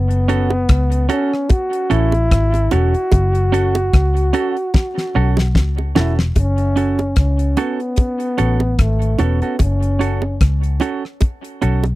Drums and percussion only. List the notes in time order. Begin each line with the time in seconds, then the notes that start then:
0.11 closed hi-hat
0.29 closed hi-hat
0.50 high bongo
0.69 kick, cross-stick, closed hi-hat
0.92 closed hi-hat
1.09 closed hi-hat
1.34 cross-stick
1.49 kick, closed hi-hat, high bongo
1.73 closed hi-hat
1.91 closed hi-hat
2.12 closed hi-hat, high bongo
2.31 kick, cross-stick, closed hi-hat
2.54 closed hi-hat, high bongo
2.71 closed hi-hat, low bongo
2.94 closed hi-hat
3.12 kick, closed hi-hat, high bongo
3.35 closed hi-hat
3.54 closed hi-hat
3.75 closed hi-hat, high bongo
3.93 kick, cross-stick, closed hi-hat
4.17 closed hi-hat
4.34 closed hi-hat
4.57 closed hi-hat
4.74 kick, snare, high bongo
4.98 snare
5.37 snare, high bongo
5.55 kick, snare
5.78 high bongo
5.96 snare, low bongo
6.19 snare
6.36 kick, closed hi-hat, high bongo
6.58 closed hi-hat
6.77 closed hi-hat
6.99 closed hi-hat, high bongo
7.16 kick, cross-stick, closed hi-hat
7.39 closed hi-hat
7.57 closed hi-hat, low bongo
7.80 closed hi-hat
7.96 kick, closed hi-hat, high bongo
8.20 closed hi-hat
8.38 closed hi-hat
8.60 high bongo
8.79 kick, cross-stick, closed hi-hat
9.02 closed hi-hat
9.19 closed hi-hat, low bongo
9.42 closed hi-hat
9.59 kick, closed hi-hat, high bongo
9.83 closed hi-hat
10.01 closed hi-hat
10.22 high bongo
10.41 kick, cross-stick, closed hi-hat
10.63 closed hi-hat
10.80 closed hi-hat, low bongo
11.05 cross-stick
11.21 kick, closed hi-hat, high bongo
11.44 closed hi-hat
11.62 closed hi-hat
11.84 closed hi-hat, high bongo